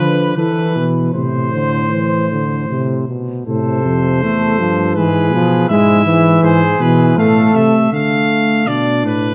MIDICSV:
0, 0, Header, 1, 5, 480
1, 0, Start_track
1, 0, Key_signature, 0, "minor"
1, 0, Tempo, 773196
1, 712, Time_signature, 3, 2, 24, 8
1, 2155, Tempo, 744417
1, 5942, End_track
2, 0, Start_track
2, 0, Title_t, "Trumpet"
2, 0, Program_c, 0, 56
2, 0, Note_on_c, 0, 71, 80
2, 222, Note_off_c, 0, 71, 0
2, 225, Note_on_c, 0, 71, 66
2, 534, Note_off_c, 0, 71, 0
2, 713, Note_on_c, 0, 72, 73
2, 1892, Note_off_c, 0, 72, 0
2, 2158, Note_on_c, 0, 72, 82
2, 3091, Note_off_c, 0, 72, 0
2, 3108, Note_on_c, 0, 71, 75
2, 3574, Note_off_c, 0, 71, 0
2, 3584, Note_on_c, 0, 76, 87
2, 4050, Note_off_c, 0, 76, 0
2, 4063, Note_on_c, 0, 72, 88
2, 4308, Note_on_c, 0, 71, 73
2, 4318, Note_off_c, 0, 72, 0
2, 4542, Note_off_c, 0, 71, 0
2, 4546, Note_on_c, 0, 77, 75
2, 4786, Note_on_c, 0, 76, 75
2, 4795, Note_off_c, 0, 77, 0
2, 5026, Note_off_c, 0, 76, 0
2, 5030, Note_on_c, 0, 77, 88
2, 5508, Note_on_c, 0, 74, 82
2, 5518, Note_off_c, 0, 77, 0
2, 5751, Note_off_c, 0, 74, 0
2, 5755, Note_on_c, 0, 71, 73
2, 5942, Note_off_c, 0, 71, 0
2, 5942, End_track
3, 0, Start_track
3, 0, Title_t, "Flugelhorn"
3, 0, Program_c, 1, 56
3, 0, Note_on_c, 1, 71, 78
3, 227, Note_off_c, 1, 71, 0
3, 233, Note_on_c, 1, 69, 79
3, 467, Note_off_c, 1, 69, 0
3, 473, Note_on_c, 1, 71, 76
3, 701, Note_off_c, 1, 71, 0
3, 705, Note_on_c, 1, 72, 75
3, 1888, Note_off_c, 1, 72, 0
3, 2151, Note_on_c, 1, 69, 87
3, 2612, Note_off_c, 1, 69, 0
3, 2639, Note_on_c, 1, 69, 76
3, 3105, Note_off_c, 1, 69, 0
3, 3116, Note_on_c, 1, 68, 82
3, 3586, Note_on_c, 1, 64, 92
3, 3596, Note_off_c, 1, 68, 0
3, 4061, Note_off_c, 1, 64, 0
3, 4068, Note_on_c, 1, 68, 99
3, 4535, Note_off_c, 1, 68, 0
3, 4547, Note_on_c, 1, 69, 86
3, 5022, Note_off_c, 1, 69, 0
3, 5942, End_track
4, 0, Start_track
4, 0, Title_t, "Trombone"
4, 0, Program_c, 2, 57
4, 0, Note_on_c, 2, 53, 89
4, 230, Note_off_c, 2, 53, 0
4, 235, Note_on_c, 2, 52, 77
4, 704, Note_off_c, 2, 52, 0
4, 712, Note_on_c, 2, 48, 66
4, 946, Note_off_c, 2, 48, 0
4, 950, Note_on_c, 2, 50, 61
4, 1188, Note_on_c, 2, 52, 63
4, 1198, Note_off_c, 2, 50, 0
4, 1429, Note_off_c, 2, 52, 0
4, 1433, Note_on_c, 2, 50, 58
4, 1668, Note_off_c, 2, 50, 0
4, 1672, Note_on_c, 2, 48, 65
4, 1906, Note_off_c, 2, 48, 0
4, 1910, Note_on_c, 2, 47, 54
4, 2146, Note_off_c, 2, 47, 0
4, 2152, Note_on_c, 2, 48, 72
4, 2642, Note_on_c, 2, 57, 92
4, 2652, Note_off_c, 2, 48, 0
4, 2878, Note_on_c, 2, 53, 78
4, 2887, Note_off_c, 2, 57, 0
4, 3119, Note_on_c, 2, 52, 87
4, 3128, Note_off_c, 2, 53, 0
4, 3353, Note_off_c, 2, 52, 0
4, 3362, Note_on_c, 2, 53, 96
4, 3588, Note_off_c, 2, 53, 0
4, 3595, Note_on_c, 2, 56, 95
4, 3818, Note_off_c, 2, 56, 0
4, 3821, Note_on_c, 2, 52, 101
4, 4189, Note_off_c, 2, 52, 0
4, 4298, Note_on_c, 2, 52, 87
4, 4545, Note_on_c, 2, 57, 106
4, 4554, Note_off_c, 2, 52, 0
4, 5024, Note_off_c, 2, 57, 0
4, 5028, Note_on_c, 2, 57, 81
4, 5512, Note_on_c, 2, 62, 73
4, 5522, Note_off_c, 2, 57, 0
4, 5942, Note_off_c, 2, 62, 0
4, 5942, End_track
5, 0, Start_track
5, 0, Title_t, "Tuba"
5, 0, Program_c, 3, 58
5, 0, Note_on_c, 3, 50, 77
5, 227, Note_off_c, 3, 50, 0
5, 230, Note_on_c, 3, 52, 76
5, 465, Note_off_c, 3, 52, 0
5, 469, Note_on_c, 3, 47, 62
5, 706, Note_off_c, 3, 47, 0
5, 711, Note_on_c, 3, 45, 74
5, 1892, Note_off_c, 3, 45, 0
5, 2151, Note_on_c, 3, 45, 75
5, 2379, Note_off_c, 3, 45, 0
5, 2397, Note_on_c, 3, 41, 69
5, 2636, Note_on_c, 3, 40, 64
5, 2646, Note_off_c, 3, 41, 0
5, 2878, Note_on_c, 3, 43, 76
5, 2887, Note_off_c, 3, 40, 0
5, 3113, Note_on_c, 3, 44, 78
5, 3123, Note_off_c, 3, 43, 0
5, 3347, Note_on_c, 3, 47, 70
5, 3357, Note_off_c, 3, 44, 0
5, 3585, Note_off_c, 3, 47, 0
5, 3588, Note_on_c, 3, 44, 76
5, 4052, Note_off_c, 3, 44, 0
5, 4058, Note_on_c, 3, 44, 69
5, 4292, Note_off_c, 3, 44, 0
5, 4296, Note_on_c, 3, 47, 83
5, 4534, Note_off_c, 3, 47, 0
5, 4538, Note_on_c, 3, 45, 75
5, 4773, Note_off_c, 3, 45, 0
5, 4777, Note_on_c, 3, 48, 70
5, 5020, Note_off_c, 3, 48, 0
5, 5025, Note_on_c, 3, 50, 66
5, 5485, Note_off_c, 3, 50, 0
5, 5505, Note_on_c, 3, 47, 64
5, 5745, Note_on_c, 3, 45, 76
5, 5754, Note_off_c, 3, 47, 0
5, 5942, Note_off_c, 3, 45, 0
5, 5942, End_track
0, 0, End_of_file